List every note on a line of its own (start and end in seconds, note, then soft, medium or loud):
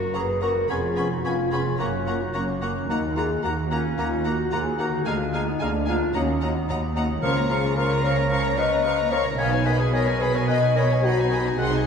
0.00 0.63 F#2 soft
0.00 0.65 A#3 soft
0.00 0.59 C#4 soft
0.00 0.14 F#4 medium
0.00 0.69 F#4 soft
0.00 0.14 A#4 medium
0.13 0.62 F#1 medium
0.13 0.63 F#2 medium
0.13 0.26 A#3 soft
0.13 0.22 C#4 soft
0.13 0.44 G#4 medium
0.13 0.42 B4 medium
0.13 0.23 F#5 soft
0.13 0.26 A#5 medium
0.13 0.22 A#5 medium
0.13 0.21 C#6 soft
0.41 0.54 A#3 soft
0.41 0.49 C#4 soft
0.41 0.70 F#4 medium
0.41 0.69 A#4 medium
0.41 0.50 F#5 soft
0.41 0.54 A#5 soft
0.41 0.50 A#5 soft
0.41 0.48 C#6 soft
0.51 1.73 F2 soft
0.55 1.75 G#3 soft
0.60 1.69 C#4 soft
0.65 1.79 B4 soft
0.69 1.18 F1 medium
0.69 1.18 F2 medium
0.69 0.82 B3 medium
0.69 0.77 C#4 medium
0.69 1.14 F4 medium
0.69 1.11 G#4 medium
0.69 0.78 G#5 medium
0.69 0.82 G#5 medium
0.69 0.77 B5 soft
0.69 0.76 C#6 soft
0.96 1.09 B3 soft
0.96 1.05 C#4 medium
0.96 1.05 G#5 soft
0.96 1.09 G#5 soft
0.96 1.04 B5 soft
0.96 1.04 C#6 soft
1.12 1.25 D#4 medium
1.12 1.25 F#4 medium
1.24 1.73 F1 medium
1.24 1.73 F2 medium
1.24 1.37 B3 soft
1.24 1.33 C#4 soft
1.24 1.52 C#4 medium
1.24 1.52 F4 medium
1.24 1.37 G#5 soft
1.24 1.33 G#5 soft
1.24 1.33 B5 soft
1.24 1.31 C#6 soft
1.51 1.65 B3 soft
1.51 1.60 C#4 soft
1.51 1.81 F4 medium
1.51 1.79 G#4 medium
1.51 1.64 G#5 soft
1.51 1.60 G#5 soft
1.51 1.60 B5 soft
1.51 1.58 C#6 soft
1.61 2.82 F#2 soft
1.66 2.74 A#3 soft
1.70 2.87 C#4 soft
1.75 2.19 F4 medium
1.75 2.83 A#4 soft
1.79 2.28 F#1 medium
1.79 2.28 F#2 medium
1.79 1.88 A#3 medium
1.79 1.92 A#3 medium
1.79 2.23 C#4 medium
1.79 1.92 F#5 soft
1.79 1.88 F#5 soft
1.79 1.87 A#5 soft
1.79 1.86 C#6 medium
2.07 2.15 A#3 soft
2.07 2.20 A#3 soft
2.07 2.19 F#5 soft
2.07 2.16 F#5 soft
2.07 2.15 A#5 soft
2.07 2.14 C#6 soft
2.21 2.36 D#4 medium
2.21 2.35 F#4 medium
2.33 2.82 F#1 medium
2.33 2.83 F#2 medium
2.33 2.88 A#3 medium
2.33 2.43 A#3 soft
2.33 2.47 A#3 soft
2.33 2.88 C#4 medium
2.33 2.47 F#5 soft
2.33 2.43 F#5 soft
2.33 2.42 A#5 medium
2.33 2.40 C#6 soft
2.62 2.70 A#3 soft
2.62 2.75 A#3 medium
2.62 2.74 F#5 soft
2.62 2.70 F#5 soft
2.62 2.70 A#5 soft
2.62 2.68 C#6 soft
2.71 5.00 D#3 soft
2.75 4.92 A#3 soft
2.80 5.04 F#4 soft
2.84 5.00 A#4 soft
2.88 3.37 D#2 medium
2.88 3.01 A#3 medium
2.88 2.97 A#3 medium
2.88 3.01 A#3 medium
2.88 3.16 D#4 medium
2.88 3.01 F#5 medium
2.88 2.98 F#5 soft
2.88 2.95 A#5 soft
2.88 2.98 A#5 soft
3.15 3.24 A#3 medium
3.15 3.29 A#3 medium
3.15 3.28 F4 medium
3.15 3.44 G#4 medium
3.15 3.29 F#5 medium
3.15 3.24 F#5 soft
3.15 3.22 A#5 soft
3.15 3.25 A#5 soft
3.42 3.91 D#2 medium
3.42 3.92 D#2 medium
3.42 3.51 A#3 soft
3.42 3.56 A#3 soft
3.42 3.70 D#4 medium
3.42 3.71 F#4 medium
3.42 3.51 F#5 medium
3.42 3.56 F#5 medium
3.42 3.49 A#5 medium
3.42 3.53 A#5 medium
3.70 3.79 A#3 soft
3.70 3.84 A#3 soft
3.70 4.25 C#4 medium
3.70 4.26 F4 medium
3.70 3.83 F#5 soft
3.70 3.79 F#5 soft
3.70 3.76 A#5 soft
3.70 3.80 A#5 medium
3.98 4.46 D#2 medium
3.98 4.06 A#3 medium
3.98 4.11 A#3 medium
3.98 4.06 F#5 soft
3.98 4.11 F#5 soft
3.98 4.04 A#5 medium
3.98 4.07 A#5 medium
4.25 4.33 A#3 medium
4.25 4.38 A#3 soft
4.25 4.51 D#4 medium
4.25 4.53 F#4 medium
4.25 4.37 F#5 soft
4.25 4.33 F#5 soft
4.25 4.33 A#5 soft
4.25 4.32 A#5 medium
4.52 5.00 D#2 medium
4.52 4.60 A#3 soft
4.52 4.65 A#3 soft
4.52 4.64 F4 medium
4.52 4.80 G#4 medium
4.52 4.65 F#5 medium
4.52 4.61 F#5 soft
4.52 4.60 A#5 medium
4.52 4.59 A#5 soft
4.79 4.87 A#3 medium
4.79 4.92 A#3 medium
4.79 5.08 D#4 medium
4.79 5.07 F#4 medium
4.79 4.87 F#5 soft
4.79 4.92 F#5 soft
4.79 4.87 A#5 soft
4.79 4.86 A#5 medium
4.88 6.08 D3 medium
4.93 6.00 A#3 soft
4.97 6.13 G#4 soft
5.02 6.09 A#4 soft
5.06 5.54 D2 medium
5.06 5.55 D2 medium
5.06 5.20 G#3 medium
5.06 5.15 A#3 medium
5.06 5.47 D4 medium
5.06 5.46 F4 medium
5.06 5.14 F5 medium
5.06 5.19 F5 medium
5.06 5.14 G#5 medium
5.06 5.13 A#5 medium
5.33 5.46 G#3 medium
5.33 5.41 A#3 medium
5.33 5.46 F5 medium
5.33 5.41 F5 medium
5.33 5.41 G#5 medium
5.33 5.41 A#5 soft
5.46 5.63 B3 medium
5.46 5.60 D#4 medium
5.59 6.08 D2 medium
5.59 6.09 D2 medium
5.59 5.73 G#3 medium
5.59 5.69 A#3 medium
5.59 5.90 A#3 medium
5.59 5.87 D4 medium
5.59 5.69 F5 medium
5.59 5.74 F5 medium
5.59 5.68 G#5 medium
5.59 5.68 A#5 medium
5.87 6.00 G#3 soft
5.87 5.96 A#3 medium
5.87 6.15 D4 medium
5.87 6.15 F4 medium
5.87 5.96 F5 medium
5.87 6.00 F5 medium
5.87 5.95 G#5 medium
5.87 5.95 A#5 soft
5.97 7.16 D#3 medium
6.01 9.34 A#3 soft
6.06 7.21 F#4 soft
6.10 6.43 C#4 medium
6.10 7.18 A#4 soft
6.10 6.21 A#5 medium
6.15 6.63 D#2 medium
6.15 6.28 F#3 medium
6.15 6.23 A#3 medium
6.15 6.58 A#3 medium
6.15 6.28 D#5 medium
6.15 6.24 F#5 medium
6.15 6.22 A#5 medium
6.40 6.55 F#3 medium
6.40 6.50 A#3 soft
6.40 6.55 D#5 soft
6.40 6.50 F#5 medium
6.40 6.48 A#5 soft
6.55 6.69 B3 medium
6.55 6.69 D#4 medium
6.69 7.17 D#2 medium
6.69 6.82 F#3 medium
6.69 6.78 A#3 medium
6.69 6.82 D#5 medium
6.69 6.78 F#5 medium
6.69 6.77 A#5 medium
6.69 6.75 A#5 medium
6.95 7.08 F#3 medium
6.95 7.05 A#3 medium
6.95 7.08 D#5 medium
6.95 7.05 F#5 medium
6.95 7.02 A#5 medium
6.95 7.05 A#5 medium
7.05 9.32 C#3 medium
7.10 9.34 C#4 soft
7.14 9.37 F4 soft
7.19 8.00 C#3 medium
7.19 9.39 A#4 soft
7.19 7.35 A#4 medium
7.19 7.35 F5 medium
7.19 7.29 A#5 medium
7.23 9.35 C#2 medium
7.23 9.35 C#3 medium
7.23 7.36 F3 medium
7.23 7.36 C#4 medium
7.23 7.48 F4 medium
7.23 7.36 F5 medium
7.23 7.36 C#6 medium
7.37 7.51 A#3 medium
7.37 7.50 C#5 medium
7.37 7.51 A#5 medium
7.49 7.62 F3 medium
7.49 7.64 C#4 medium
7.49 7.77 F4 medium
7.49 7.76 G#4 medium
7.49 7.62 F5 medium
7.49 7.64 F5 medium
7.49 7.56 A#5 medium
7.49 7.64 C#6 medium
7.63 7.78 A#3 medium
7.63 7.77 C#5 soft
7.63 7.78 A#5 medium
7.76 7.90 F3 medium
7.76 7.90 C#4 medium
7.76 8.04 F4 medium
7.76 8.04 A#4 loud
7.76 7.89 F5 medium
7.76 7.90 F5 medium
7.76 7.83 A#5 medium
7.76 7.90 C#6 medium
7.90 8.05 A#3 medium
7.90 8.04 C#5 medium
7.90 8.04 A#5 medium
8.03 8.17 F3 medium
8.03 8.18 C#4 medium
8.03 8.57 A#4 medium
8.03 8.56 C#5 medium
8.03 8.16 F5 medium
8.03 8.17 F5 medium
8.03 8.10 A#5 medium
8.03 8.18 C#6 medium
8.17 8.32 A#3 medium
8.17 8.31 C#5 medium
8.17 8.31 A#5 medium
8.30 8.43 F3 medium
8.30 8.44 C#4 medium
8.30 8.43 F5 medium
8.30 8.38 A#5 medium
8.30 8.43 C#6 medium
8.44 8.59 A#3 medium
8.44 8.58 C#5 medium
8.44 8.58 A#5 medium
8.57 8.70 F3 medium
8.57 8.72 C#4 medium
8.57 9.11 B4 medium
8.57 9.11 D#5 medium
8.57 8.71 F5 medium
8.57 8.70 F5 medium
8.57 8.65 A#5 medium
8.57 8.71 C#6 medium
8.70 8.86 A#3 medium
8.70 8.84 C#5 medium
8.70 8.85 A#5 medium
8.84 8.97 F3 medium
8.84 8.98 C#4 medium
8.84 8.97 F5 medium
8.84 8.92 A#5 medium
8.84 8.97 C#6 medium
8.97 9.13 A#3 medium
8.97 9.12 C#5 medium
8.97 9.11 A#5 medium
9.10 9.24 F3 medium
9.10 9.26 C#4 medium
9.10 9.38 A#4 medium
9.10 9.23 C#5 loud
9.10 9.25 F5 medium
9.10 9.24 F5 medium
9.10 9.18 A#5 medium
9.10 9.25 C#6 medium
9.21 11.52 B2 medium
9.21 9.38 C#5 medium
9.21 9.38 A#5 medium
9.25 11.43 G#3 medium
9.25 9.40 A#3 medium
9.30 11.47 D#4 medium
9.34 11.87 G#4 medium
9.34 9.51 D#5 medium
9.34 9.65 F5 loud
9.38 11.54 B1 medium
9.38 11.54 B2 medium
9.38 9.51 D#3 medium
9.38 9.52 B3 medium
9.38 9.67 C#5 medium
9.38 9.51 G#5 medium
9.38 9.46 G#5 medium
9.38 9.51 B5 medium
9.52 9.67 D#4 medium
9.52 9.66 B4 medium
9.52 9.66 G#5 medium
9.65 9.79 D#3 medium
9.65 9.80 B3 medium
9.65 9.79 B4 medium
9.65 9.79 D#5 medium
9.65 9.72 G#5 medium
9.65 9.79 G#5 medium
9.65 9.80 B5 medium
9.79 9.94 D#4 medium
9.79 9.93 G#4 medium
9.79 9.93 B4 medium
9.79 9.93 G#5 medium
9.92 10.06 D#3 medium
9.92 10.07 B3 medium
9.92 10.23 A#4 medium
9.92 10.20 C#5 loud
9.92 10.06 D#5 medium
9.92 9.99 G#5 medium
9.92 10.06 G#5 medium
9.92 10.07 B5 medium
10.07 10.21 D#4 medium
10.07 10.21 B4 medium
10.07 10.21 G#5 medium
10.19 10.33 D#3 medium
10.19 10.35 B3 medium
10.19 10.36 G#4 medium
10.19 10.34 B4 medium
10.19 10.34 D#5 medium
10.19 10.27 G#5 medium
10.19 10.34 G#5 medium
10.19 10.35 B5 medium
10.33 10.48 D#4 medium
10.33 10.47 A#4 medium
10.33 10.48 B4 medium
10.33 10.41 C#5 medium
10.33 10.49 G#5 medium
10.47 10.60 D#3 medium
10.47 10.61 B3 medium
10.47 10.60 B4 medium
10.47 10.61 D#5 medium
10.47 10.75 D#5 loud
10.47 10.60 G#5 medium
10.47 10.54 G#5 medium
10.47 10.62 B5 medium
10.61 10.76 D#4 medium
10.61 10.75 B4 medium
10.61 10.77 G#5 medium
10.75 10.88 D#3 medium
10.75 10.90 B3 medium
10.75 10.88 A#4 medium
10.75 11.04 C#5 medium
10.75 10.89 D#5 medium
10.75 10.88 G#5 soft
10.75 10.82 G#5 medium
10.75 10.91 B5 medium
10.89 11.04 D#4 medium
10.89 11.03 B4 medium
10.89 11.05 G#5 medium
11.02 11.15 D#3 medium
11.02 11.17 B3 medium
11.02 11.57 D#4 medium
11.02 11.59 F#4 medium
11.02 11.16 D#5 medium
11.02 11.15 G#5 medium
11.02 11.10 G#5 medium
11.02 11.17 B5 medium
11.16 11.31 D#4 medium
11.16 11.30 B4 soft
11.16 11.32 G#5 medium
11.30 11.43 D#3 medium
11.30 11.45 B3 medium
11.30 11.45 D#5 medium
11.30 11.43 G#5 medium
11.30 11.38 G#5 medium
11.30 11.46 B5 medium
11.40 11.87 C3 medium
11.44 11.87 G#3 soft
11.44 11.58 D#4 soft
11.44 11.58 B4 medium
11.44 11.59 G#5 soft
11.49 11.87 D#4 soft
11.53 11.87 F#4 soft
11.58 11.87 C2 medium
11.58 11.87 C3 medium
11.58 11.71 D#3 medium
11.58 11.72 C4 medium
11.58 11.71 D#4 medium
11.58 11.86 G#4 medium
11.58 11.71 F#5 medium
11.58 11.70 F#5 medium
11.58 11.66 G#5 medium
11.58 11.72 C6 medium
11.72 11.86 D#4 medium
11.72 11.86 D#5 soft
11.72 11.87 G#5 medium